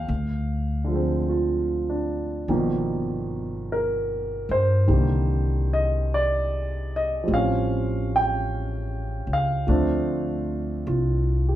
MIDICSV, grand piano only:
0, 0, Header, 1, 2, 480
1, 0, Start_track
1, 0, Tempo, 1197605
1, 34, Time_signature, 4, 2, 24, 8
1, 4632, End_track
2, 0, Start_track
2, 0, Title_t, "Grand piano"
2, 0, Program_c, 0, 0
2, 0, Control_c, 0, 64, 127
2, 0, Note_on_c, 0, 60, 58
2, 0, Note_on_c, 0, 77, 79
2, 0, Note_on_c, 0, 79, 81
2, 40, Control_c, 0, 64, 0
2, 43, Note_off_c, 0, 79, 0
2, 45, Note_off_c, 0, 60, 0
2, 98, Control_c, 0, 64, 127
2, 338, Note_on_c, 0, 50, 42
2, 353, Note_on_c, 0, 53, 37
2, 367, Note_on_c, 0, 56, 38
2, 381, Note_on_c, 0, 60, 44
2, 501, Note_off_c, 0, 77, 0
2, 519, Note_on_c, 0, 65, 38
2, 760, Note_on_c, 0, 62, 37
2, 901, Note_off_c, 0, 65, 0
2, 987, Note_off_c, 0, 50, 0
2, 993, Note_off_c, 0, 53, 0
2, 997, Note_on_c, 0, 51, 48
2, 999, Note_on_c, 0, 53, 44
2, 1001, Control_c, 0, 64, 0
2, 1002, Note_off_c, 0, 56, 0
2, 1002, Note_on_c, 0, 47, 51
2, 1006, Note_on_c, 0, 58, 44
2, 1009, Note_off_c, 0, 60, 0
2, 1072, Control_c, 0, 64, 127
2, 1102, Note_off_c, 0, 62, 0
2, 1492, Note_on_c, 0, 70, 58
2, 1809, Note_on_c, 0, 72, 74
2, 1814, Note_off_c, 0, 70, 0
2, 1948, Note_off_c, 0, 51, 0
2, 1954, Note_on_c, 0, 51, 40
2, 1959, Note_off_c, 0, 53, 0
2, 1959, Note_on_c, 0, 55, 40
2, 1961, Note_off_c, 0, 47, 0
2, 1962, Note_off_c, 0, 58, 0
2, 1963, Control_c, 0, 64, 0
2, 1968, Note_on_c, 0, 58, 40
2, 1977, Note_on_c, 0, 50, 42
2, 2021, Control_c, 0, 64, 127
2, 2267, Note_off_c, 0, 72, 0
2, 2298, Note_on_c, 0, 75, 73
2, 2438, Note_off_c, 0, 75, 0
2, 2462, Note_on_c, 0, 74, 71
2, 2778, Note_off_c, 0, 74, 0
2, 2790, Note_on_c, 0, 75, 72
2, 2900, Note_on_c, 0, 53, 42
2, 2905, Note_off_c, 0, 55, 0
2, 2911, Note_on_c, 0, 55, 37
2, 2915, Note_off_c, 0, 51, 0
2, 2922, Note_off_c, 0, 58, 0
2, 2922, Control_c, 0, 64, 0
2, 2927, Note_off_c, 0, 50, 0
2, 2927, Note_on_c, 0, 60, 38
2, 2938, Note_off_c, 0, 75, 0
2, 2940, Note_on_c, 0, 77, 78
2, 2945, Note_on_c, 0, 61, 48
2, 3000, Control_c, 0, 64, 127
2, 3257, Note_off_c, 0, 77, 0
2, 3269, Note_on_c, 0, 79, 74
2, 3741, Note_on_c, 0, 77, 80
2, 3747, Note_off_c, 0, 79, 0
2, 3869, Note_off_c, 0, 53, 0
2, 3874, Note_off_c, 0, 55, 0
2, 3875, Note_on_c, 0, 53, 43
2, 3876, Note_off_c, 0, 60, 0
2, 3880, Note_on_c, 0, 57, 41
2, 3881, Control_c, 0, 64, 0
2, 3882, Note_on_c, 0, 60, 41
2, 3883, Note_on_c, 0, 62, 50
2, 3891, Note_off_c, 0, 61, 0
2, 3942, Control_c, 0, 64, 127
2, 4351, Note_off_c, 0, 77, 0
2, 4358, Note_on_c, 0, 65, 38
2, 4603, Note_on_c, 0, 67, 38
2, 4632, Note_off_c, 0, 53, 0
2, 4632, Note_off_c, 0, 57, 0
2, 4632, Note_off_c, 0, 60, 0
2, 4632, Note_off_c, 0, 62, 0
2, 4632, Note_off_c, 0, 65, 0
2, 4632, Note_off_c, 0, 67, 0
2, 4632, End_track
0, 0, End_of_file